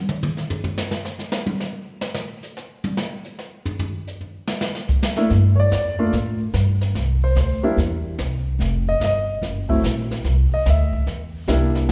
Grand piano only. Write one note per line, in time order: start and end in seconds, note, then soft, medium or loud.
5.17 5.29 A3 medium
5.17 5.30 A#3 medium
5.17 5.30 D4 medium
5.17 5.30 E4 medium
5.56 5.57 C#5 medium
5.60 5.72 D5 medium
5.75 6.12 D5 medium
5.99 6.12 A3 medium
5.99 6.12 A#3 medium
5.99 6.12 D4 medium
5.99 6.12 F4 medium
7.24 7.37 C5 medium
7.41 7.77 C5 medium
7.63 7.76 G3 medium
7.63 7.76 A#3 medium
7.63 7.76 D4 medium
7.63 7.76 E4 medium
8.89 9.01 D#5 loud
9.04 9.41 D#5 medium
9.69 9.82 F#3 medium
9.69 9.82 A3 medium
9.69 9.82 C4 medium
9.69 9.82 E4 medium
10.54 10.66 D#5 medium
10.70 11.06 E5 medium
11.48 11.89 G3 medium
11.48 11.89 A#3 medium
11.48 11.89 D4 medium
11.48 11.90 E4 medium